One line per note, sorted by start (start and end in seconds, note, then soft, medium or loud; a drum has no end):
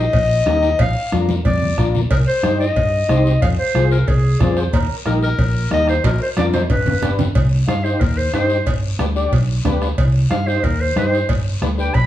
0.00 0.82 D#5 loud
0.13 0.40 A#1 medium
0.13 bombo low medium
0.13 cowbell medium
0.13 high conga soft
0.13 long guiro medium
0.46 0.72 D#2 medium
0.46 0.69 D#4 medium
0.46 0.69 G4 medium
0.46 0.70 A#4 medium
0.46 bombo rim medium
0.46 high conga medium
0.46 low timbale medium
0.46 short guiro medium
0.63 short guiro medium
0.79 0.93 A#1 medium
0.79 1.19 F5 loud
0.79 bombo low medium
0.79 cowbell loud
0.79 high conga soft
0.79 long guiro medium
1.12 1.39 F2 medium
1.12 1.35 D4 medium
1.12 1.35 F4 medium
1.12 1.36 A#4 medium
1.12 bombo rim medium
1.12 high conga medium
1.12 short guiro medium
1.29 high conga loud
1.29 short guiro medium
1.45 1.71 F2 medium
1.45 1.91 D5 medium
1.45 bombo low medium
1.45 cowbell medium
1.45 high conga medium
1.45 long guiro medium
1.62 low conga medium
1.78 2.04 A#1 medium
1.78 2.01 D4 medium
1.78 2.01 F4 medium
1.78 2.01 A#4 medium
1.78 bombo low medium
1.78 bombo rim medium
1.78 short guiro medium
1.95 low conga medium
1.95 short guiro medium
2.11 2.24 C2 medium
2.11 2.18 A#4 medium
2.11 bombo low medium
2.11 cowbell loud
2.11 high conga soft
2.11 long guiro medium
2.28 2.58 C5 medium
2.43 2.69 G2 medium
2.43 2.66 D#4 medium
2.43 2.66 G4 medium
2.43 2.67 C5 medium
2.43 bombo rim medium
2.43 high conga medium
2.43 short guiro medium
2.60 3.38 D#5 medium
2.60 short guiro medium
2.76 3.02 G2 medium
2.76 bombo low medium
2.76 cowbell medium
2.76 high conga soft
2.76 long guiro medium
3.09 3.35 C2 medium
3.09 3.32 D#4 medium
3.09 3.32 G4 medium
3.09 3.32 C5 medium
3.09 bombo rim medium
3.09 high conga medium
3.09 short guiro medium
3.26 short guiro medium
3.42 3.55 F2 loud
3.42 3.49 F5 medium
3.42 bombo low medium
3.42 cowbell loud
3.42 high conga soft
3.42 long guiro medium
3.59 3.89 C5 medium
3.75 4.01 C2 medium
3.75 3.98 F4 medium
3.75 3.98 G#4 medium
3.75 3.98 C5 medium
3.75 bombo rim medium
3.75 high conga medium
3.75 short guiro medium
3.91 4.09 A#4 medium
3.91 short guiro medium
4.08 4.34 C2 medium
4.08 4.57 G#4 medium
4.08 bombo low medium
4.08 cowbell medium
4.08 high conga soft
4.08 long guiro medium
4.40 4.67 F2 medium
4.40 4.63 F4 medium
4.40 4.63 G#4 medium
4.40 4.64 C5 medium
4.40 4.57 D5 medium
4.40 bombo low medium
4.40 bombo rim medium
4.40 high conga medium
4.40 low conga medium
4.40 low timbale medium
4.40 short guiro medium
4.56 4.73 C5 medium
4.56 bombo rim medium
4.56 short guiro medium
4.73 4.86 D#2 loud
4.73 4.96 A#4 medium
4.73 bombo low medium
4.73 cowbell loud
4.73 long guiro medium
5.06 5.32 A#1 medium
5.06 5.29 D#4 medium
5.06 5.29 G4 medium
5.06 5.14 A#4 medium
5.06 5.29 A#4 medium
5.06 bombo rim medium
5.06 high conga medium
5.06 short guiro medium
5.23 5.69 A#4 medium
5.23 short guiro medium
5.38 5.65 A#1 medium
5.38 bombo low medium
5.38 cowbell medium
5.38 high conga soft
5.38 long guiro medium
5.71 5.97 D#2 medium
5.71 5.94 D#4 medium
5.71 5.94 G4 medium
5.71 5.94 A#4 medium
5.71 5.88 D#5 loud
5.71 bombo rim medium
5.71 high conga medium
5.71 short guiro medium
5.88 6.04 C5 medium
5.88 bombo rim medium
5.88 short guiro medium
6.04 6.17 A#1 medium
6.04 6.20 A#4 medium
6.04 bombo low medium
6.04 cowbell loud
6.04 high conga soft
6.04 high timbale medium
6.04 long guiro medium
6.22 6.29 C5 medium
6.37 6.63 F2 medium
6.37 6.60 D4 medium
6.37 6.60 F4 medium
6.37 6.60 A#4 medium
6.37 6.46 D5 medium
6.37 bombo rim medium
6.37 high conga loud
6.37 low timbale medium
6.37 short guiro medium
6.53 6.61 C5 medium
6.53 high conga medium
6.53 high timbale medium
6.53 short guiro medium
6.70 6.96 G1 medium
6.70 7.16 B4 medium
6.70 bombo low medium
6.70 cowbell medium
6.70 low timbale medium
6.70 long guiro medium
6.86 low conga medium
6.86 low timbale medium
7.02 7.29 G1 medium
7.02 7.25 D4 medium
7.02 7.26 G4 medium
7.02 7.26 B4 medium
7.02 bombo rim medium
7.02 low conga medium
7.02 low timbale medium
7.02 short guiro medium
7.19 low conga loud
7.19 low timbale medium
7.19 short guiro medium
7.35 7.62 C2 loud
7.35 bombo low medium
7.35 cowbell loud
7.35 high conga soft
7.35 long guiro medium
7.67 7.94 G2 medium
7.67 7.74 D#4 medium
7.67 7.74 G4 medium
7.67 7.74 C5 medium
7.67 7.86 F5 loud
7.67 bombo rim medium
7.67 high conga medium
7.67 short guiro medium
7.84 8.02 D#4 medium
7.84 8.02 G4 medium
7.84 8.02 C5 medium
7.84 short guiro medium
8.00 8.27 D#2 medium
8.00 8.19 A#4 medium
8.00 bombo low medium
8.00 cowbell medium
8.00 high conga soft
8.00 long guiro medium
8.18 8.34 C5 medium
8.33 8.60 G2 medium
8.33 8.57 D#4 medium
8.33 8.57 G4 medium
8.33 8.66 C5 medium
8.33 8.57 C5 medium
8.33 bombo rim medium
8.33 high conga medium
8.33 low timbale medium
8.33 short guiro medium
8.50 short guiro medium
8.66 8.93 G1 medium
8.66 bombo low medium
8.66 cowbell loud
8.66 high conga soft
8.66 long guiro medium
8.99 9.25 D2 medium
8.99 9.05 D4 medium
8.99 9.05 G4 medium
8.99 9.05 B4 medium
8.99 bombo rim medium
8.99 high conga medium
8.99 short guiro medium
9.16 9.33 D4 medium
9.16 9.33 G4 medium
9.16 9.33 D5 medium
9.16 short guiro medium
9.32 9.59 B1 medium
9.32 bombo low medium
9.32 cowbell medium
9.32 high conga soft
9.32 long guiro medium
9.65 9.91 D2 medium
9.65 9.88 D4 medium
9.65 9.88 G4 medium
9.65 9.88 B4 medium
9.65 bombo rim medium
9.65 high conga medium
9.65 low conga medium
9.65 low timbale medium
9.65 short guiro medium
9.82 bombo rim medium
9.82 short guiro medium
9.98 10.24 C2 loud
9.98 bombo low medium
9.98 cowbell loud
9.98 high conga soft
9.98 long guiro medium
10.30 10.57 G2 medium
10.30 10.37 D#4 medium
10.30 10.37 G4 medium
10.30 10.37 C5 medium
10.30 10.49 F5 loud
10.30 bombo rim medium
10.30 high conga medium
10.30 short guiro medium
10.47 10.64 D#4 medium
10.47 10.65 G4 medium
10.47 10.66 C5 medium
10.47 10.65 C5 medium
10.47 short guiro medium
10.63 10.90 D#2 medium
10.63 10.83 A#4 medium
10.63 bombo low medium
10.63 cowbell medium
10.63 high conga soft
10.63 long guiro medium
10.81 10.96 C5 medium
10.96 11.22 G2 medium
10.96 11.19 D#4 medium
10.96 11.19 G4 medium
10.96 11.19 C5 medium
10.96 11.29 C5 medium
10.96 bombo rim medium
10.96 high conga medium
10.96 short guiro medium
11.14 short guiro medium
11.29 11.55 G1 loud
11.29 bombo low medium
11.29 cowbell loud
11.29 high conga soft
11.29 long guiro medium
11.62 11.88 D2 medium
11.62 11.68 D4 medium
11.62 11.68 G4 medium
11.62 11.68 B4 medium
11.62 bombo rim medium
11.62 high conga medium
11.62 short guiro medium
11.78 11.95 D4 medium
11.78 11.95 G4 medium
11.78 11.96 B4 medium
11.78 11.96 G5 medium
11.78 short guiro medium
11.94 12.06 B1 medium
11.94 12.06 B5 medium
11.94 bombo low medium
11.94 cowbell medium
11.94 high conga soft
11.94 long guiro medium